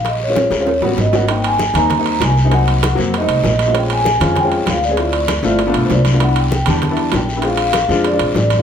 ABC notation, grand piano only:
X:1
M:4/4
L:1/16
Q:1/4=195
K:Ebmix
V:1 name="Grand piano"
z3 [A,CDF]3 z [A,CDF] z2 [G,=B,D^F]3 z [G,B,DF] z | [K:Bbdor] [G,B,CE]4 z2 [G,B,CE]2 z [G,B,CE]4 z2 [G,B,CE] | [_G,B,CE]4 z2 [G,B,C_G]2 z [=G,=A,CE]4 z2 [G,A,CF] | [A,CDF]4 z2 [A,CDF]2 z [A,CDF]4 z2 [A,CDA] |
[=A,C_F=F]4 z2 [A,C_F=F]2 z [A,=B,=DF]4 z2 [A,B,DF] | [G,=B,=D=E]4 z2 [G,B,DG]2 z [G,B,DE]4 z2 [G,B,DE] | [A,C=DF]4 z2 [A,CDF]2 z [A,CDF]4 z2 [A,CDF] |]